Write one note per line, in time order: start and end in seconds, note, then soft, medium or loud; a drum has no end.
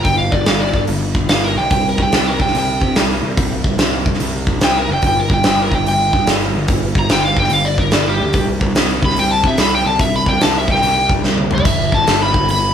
0.03 0.31 G1 medium
0.03 0.18 G5 medium
0.03 kick medium
0.03 open hi-hat soft
0.18 0.32 F5 medium
0.32 0.45 G1 medium
0.32 0.46 D5 medium
0.32 kick medium
0.46 0.72 G1 medium
0.46 0.60 F5 medium
0.46 snare loud
0.46 open hi-hat medium
0.60 0.82 D5 medium
0.74 0.87 G1 medium
0.74 kick medium
0.87 1.28 G1 medium
0.87 open hi-hat soft
1.15 kick medium
1.29 1.55 G1 medium
1.29 1.43 F5 loud
1.29 snare loud
1.29 open hi-hat medium
1.44 1.57 A#4 medium
1.56 1.70 B1 loud
1.56 1.71 G5 medium
1.70 1.97 C2 medium
1.70 1.85 G5 medium
1.70 kick loud
1.70 open hi-hat medium
1.89 2.00 A#4 medium
1.98 2.12 C2 medium
1.98 kick medium
2.02 2.14 G5 medium
2.12 2.39 C2 medium
2.12 snare loud
2.12 open hi-hat medium
2.17 2.28 G5 loud
2.27 2.40 A#4 medium
2.40 2.54 C2 medium
2.40 2.54 G5 medium
2.40 kick medium
2.47 snare soft
2.55 2.80 C2 medium
2.55 2.96 G5 loud
2.55 open hi-hat medium
2.81 2.95 C3 medium
2.81 kick medium
2.96 3.22 C2 medium
2.96 snare loud
2.96 open hi-hat medium
3.10 snare soft
3.23 3.36 C2 medium
3.37 3.63 C2 medium
3.37 kick loud
3.37 open hi-hat medium
3.64 3.77 C2 medium
3.64 kick medium
3.78 4.04 C2 medium
3.78 snare loud
3.78 open hi-hat medium
4.06 4.19 C2 medium
4.06 kick medium
4.14 snare soft
4.20 4.59 C2 medium
4.20 open hi-hat soft
4.47 kick medium
4.61 4.87 C2 medium
4.61 4.76 G5 loud
4.61 snare loud
4.61 open hi-hat medium
4.78 4.90 A#4 medium
4.89 5.02 F#1 medium
4.93 5.05 G5 medium
5.02 5.29 G1 medium
5.02 kick medium
5.02 open hi-hat medium
5.07 5.19 G5 medium
5.20 5.31 A#4 medium
5.30 5.43 G1 medium
5.30 5.45 G5 medium
5.30 kick medium
5.43 5.70 G1 medium
5.43 5.59 G5 medium
5.43 snare loud
5.43 open hi-hat medium
5.62 5.73 A#4 medium
5.71 5.85 G1 medium
5.71 5.87 G5 medium
5.71 kick medium
5.86 6.11 G1 medium
5.86 6.27 G5 loud
5.86 open hi-hat medium
6.13 6.25 G2 medium
6.13 kick medium
6.26 6.52 G1 medium
6.26 snare loud
6.26 open hi-hat medium
6.41 snare soft
6.54 6.68 G1 medium
6.68 6.94 G1 medium
6.68 kick loud
6.68 open hi-hat medium
6.95 7.08 G1 medium
6.95 7.11 A#5 loud
6.95 kick medium
7.09 7.35 G1 medium
7.09 7.24 G5 medium
7.09 snare loud
7.09 open hi-hat medium
7.25 7.38 F5 medium
7.37 7.50 G1 medium
7.37 7.52 G5 medium
7.37 kick medium
7.44 snare soft
7.50 7.90 G1 medium
7.50 7.66 F5 medium
7.50 open hi-hat medium
7.65 7.78 D5 medium
7.78 7.92 A#4 medium
7.78 kick medium
7.91 8.19 G1 medium
7.91 8.07 D5 medium
7.91 snare loud
7.91 open hi-hat medium
8.07 8.47 G4 loud
8.20 8.33 D2 medium
8.33 8.60 C2 loud
8.33 kick loud
8.33 open hi-hat soft
8.61 8.74 C2 medium
8.61 kick medium
8.75 9.01 C2 medium
8.75 snare loud
8.75 open hi-hat medium
9.02 9.16 C2 medium
9.02 9.18 B5 medium
9.02 kick medium
9.10 snare soft
9.16 9.43 C2 medium
9.16 9.32 G5 medium
9.16 open hi-hat medium
9.31 9.44 A5 medium
9.43 9.58 C3 medium
9.43 9.60 E5 loud
9.43 kick medium
9.58 9.84 C2 medium
9.58 9.72 B5 loud
9.58 snare loud
9.58 open hi-hat medium
9.75 9.87 G5 loud
9.85 9.99 C2 medium
9.85 10.00 A5 medium
9.99 10.26 C2 medium
9.99 10.14 E5 medium
9.99 kick medium
9.99 open hi-hat medium
10.16 10.28 B5 medium
10.26 10.40 C2 medium
10.26 10.41 G5 medium
10.26 kick medium
10.41 10.67 C2 medium
10.41 10.55 A5 medium
10.41 snare loud
10.41 open hi-hat medium
10.58 10.70 E5 medium
10.68 10.82 C2 medium
10.68 11.11 G5 medium
10.68 kick medium
10.76 snare soft
10.83 11.23 C2 medium
10.83 open hi-hat soft
11.09 kick medium
11.24 11.51 C2 loud
11.24 snare medium
11.38 high tom medium
11.51 11.65 C2 medium
11.51 11.66 D5 medium
11.51 mid tom medium
11.58 floor tom medium
11.65 11.92 G1 medium
11.65 11.93 E5 medium
11.65 kick loud
11.65 open hi-hat medium
11.65 crash medium
11.92 12.06 G1 medium
11.92 12.21 A5 medium
11.92 kick medium
12.07 12.33 G1 medium
12.07 snare loud
12.07 open hi-hat medium
12.23 12.49 B5 medium
12.34 12.49 G1 medium
12.34 kick medium
12.49 12.74 G1 medium
12.49 12.74 B5 medium
12.49 open hi-hat medium